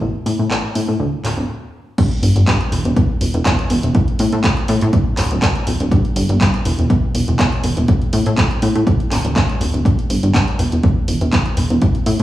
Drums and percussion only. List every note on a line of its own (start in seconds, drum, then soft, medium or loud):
0.26 open hi-hat medium
0.51 clap loud
0.75 open hi-hat medium
1.25 clap medium
1.25 open hi-hat medium
1.98 kick loud
1.98 closed hi-hat medium
1.98 crash loud
2.11 closed hi-hat soft
2.23 open hi-hat loud
2.36 closed hi-hat medium
2.47 kick loud
2.47 clap loud
2.47 closed hi-hat medium
2.61 closed hi-hat soft
2.72 open hi-hat loud
2.85 closed hi-hat medium
2.96 kick loud
2.96 closed hi-hat medium
3.21 open hi-hat loud
3.34 closed hi-hat medium
3.45 kick loud
3.45 clap loud
3.45 closed hi-hat medium
3.59 closed hi-hat soft
3.70 open hi-hat loud
3.83 closed hi-hat medium
3.95 kick loud
3.95 closed hi-hat medium
4.08 closed hi-hat soft
4.19 open hi-hat loud
4.32 closed hi-hat medium
4.44 kick loud
4.44 clap loud
4.44 closed hi-hat medium
4.57 closed hi-hat soft
4.68 open hi-hat loud
4.81 closed hi-hat medium
4.93 kick loud
4.93 closed hi-hat medium
5.17 clap medium
5.17 open hi-hat loud
5.31 closed hi-hat medium
5.42 kick loud
5.42 clap loud
5.42 closed hi-hat medium
5.55 closed hi-hat soft
5.67 open hi-hat loud
5.80 closed hi-hat medium
5.91 kick loud
5.91 closed hi-hat medium
6.05 closed hi-hat soft
6.16 open hi-hat loud
6.29 closed hi-hat medium
6.41 kick loud
6.41 clap loud
6.41 closed hi-hat medium
6.54 closed hi-hat soft
6.65 open hi-hat loud
6.79 closed hi-hat medium
6.90 kick loud
6.90 closed hi-hat medium
7.15 open hi-hat loud
7.28 closed hi-hat medium
7.39 kick loud
7.39 clap loud
7.39 closed hi-hat medium
7.53 closed hi-hat soft
7.64 open hi-hat loud
7.77 closed hi-hat medium
7.88 kick loud
7.88 closed hi-hat medium
8.02 closed hi-hat soft
8.13 open hi-hat loud
8.26 closed hi-hat medium
8.38 kick loud
8.38 clap loud
8.38 closed hi-hat medium
8.51 closed hi-hat soft
8.62 open hi-hat loud
8.76 closed hi-hat soft
8.87 kick loud
8.87 closed hi-hat medium
9.00 closed hi-hat soft
9.12 clap medium
9.12 open hi-hat loud
9.25 closed hi-hat medium
9.36 kick loud
9.36 clap loud
9.36 closed hi-hat medium
9.49 closed hi-hat soft
9.61 open hi-hat loud
9.74 closed hi-hat soft
9.85 kick loud
9.85 closed hi-hat medium
9.99 closed hi-hat soft
10.10 open hi-hat loud
10.23 closed hi-hat medium
10.34 kick loud
10.34 clap loud
10.34 closed hi-hat medium
10.48 closed hi-hat soft
10.59 open hi-hat loud
10.72 closed hi-hat medium
10.83 kick loud
10.83 closed hi-hat medium
11.08 open hi-hat loud
11.21 closed hi-hat soft
11.33 kick loud
11.33 clap loud
11.33 closed hi-hat medium
11.46 closed hi-hat soft
11.57 open hi-hat loud
11.70 closed hi-hat medium
11.82 kick loud
11.82 closed hi-hat medium
11.95 closed hi-hat soft
12.06 open hi-hat loud
12.19 closed hi-hat medium